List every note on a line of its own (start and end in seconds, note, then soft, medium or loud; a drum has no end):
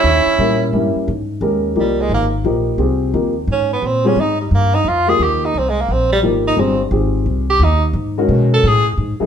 0.00 0.68 C#4 medium
0.00 0.69 E4 loud
0.04 0.25 D#2 medium
0.26 muted upright bass stroke soft
0.39 0.72 A#2 medium
0.39 0.71 G3 medium
0.39 0.72 A#3 medium
0.39 0.72 C#4 medium
0.39 0.72 E4 medium
0.73 0.94 G2 medium
0.73 1.07 G3 medium
0.73 1.08 A#3 medium
0.73 1.08 C#4 medium
0.73 1.07 E4 medium
0.96 muted upright bass stroke soft
1.08 1.40 G#2 medium
1.41 1.75 D#2 medium
1.41 1.75 G#3 medium
1.41 1.75 C#4 medium
1.41 1.75 G4 medium
1.41 1.75 A#4 medium
1.76 2.09 C2 medium
1.76 2.28 F3 medium
1.76 2.28 A#3 medium
1.76 2.29 D#4 medium
1.76 2.28 G4 medium
1.80 2.03 G3 medium
2.01 2.12 G#3 medium
2.09 2.43 G#1 medium
2.14 2.26 A#3 medium
2.44 2.77 A#1 medium
2.44 2.78 F3 medium
2.44 2.78 A#3 medium
2.44 2.78 D#4 medium
2.44 2.77 G4 medium
2.78 3.12 C2 medium
2.78 3.31 C4 medium
2.78 3.31 F4 medium
2.78 3.13 G4 medium
2.78 3.31 G#4 medium
3.13 3.47 D#2 medium
3.13 3.33 F3 medium
3.13 3.33 A#3 medium
3.13 3.34 D#4 medium
3.13 3.34 G4 medium
3.47 3.81 G#2 medium
3.52 3.71 C#4 medium
3.73 3.88 B3 medium
3.82 4.16 A#2 medium
3.82 4.08 C4 medium
4.04 4.15 G3 medium
4.04 4.16 C4 medium
4.04 4.22 C#4 medium
4.04 4.16 F4 medium
4.04 4.16 G#4 medium
4.16 4.50 G#2 medium
4.21 4.41 D#4 medium
4.41 4.56 G3 soft
4.51 4.84 G2 medium
4.51 4.76 A#3 medium
4.75 4.90 D#4 medium
4.85 5.18 F2 medium
4.85 5.10 F4 medium
5.07 5.51 F3 medium
5.07 5.52 A#3 medium
5.07 5.52 D#4 medium
5.07 5.52 G4 medium
5.07 5.25 G#4 loud
5.19 5.53 D#2 medium
5.23 5.46 G4 medium
5.45 5.60 D#4 medium
5.54 5.88 C2 medium
5.58 5.71 C4 medium
5.70 5.83 G#3 medium
5.81 5.94 A#3 medium
5.89 6.22 A#1 medium
5.89 6.12 C4 medium
6.13 6.19 G3 medium
6.23 6.56 G#1 medium
6.23 6.56 F3 medium
6.23 6.56 A#3 medium
6.23 6.56 D#4 medium
6.23 6.56 G4 medium
6.47 6.62 D#4 medium
6.56 6.90 G1 medium
6.56 6.77 G3 medium
6.56 6.77 C4 medium
6.56 6.81 C4 medium
6.56 6.77 F4 medium
6.56 6.77 G#4 medium
6.91 7.25 G#1 medium
6.91 7.44 C4 medium
6.91 7.44 F4 medium
6.91 7.44 G4 medium
6.91 7.44 G#4 medium
7.26 7.59 C2 medium
7.50 7.65 G4 medium
7.59 7.93 D#2 medium
7.64 7.84 D#4 medium
7.93 8.28 G#2 medium
8.18 8.62 D#3 medium
8.18 8.62 G#3 medium
8.18 8.62 C#4 medium
8.18 8.62 F#4 medium
8.29 8.62 B2 medium
8.54 8.69 A4 medium
8.64 8.97 A2 loud
8.64 8.88 G#4 loud
8.98 9.19 G#2 medium
9.20 9.26 F#2 medium
9.20 9.26 E3 medium
9.20 9.26 A3 medium
9.20 9.26 D#4 medium
9.20 9.26 G#4 medium
9.20 muted upright bass stroke soft